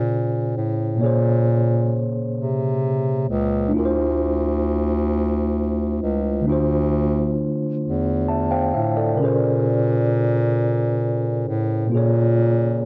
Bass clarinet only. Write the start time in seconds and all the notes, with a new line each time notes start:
Already playing: A#2
0.57 A2
1.02 A#2
2.38 C3
3.29 C#2
3.74 D2
6.02 C#2
6.47 D2
7.84 E2
8.75 A2
9.21 A#2
11.48 A2
11.94 A#2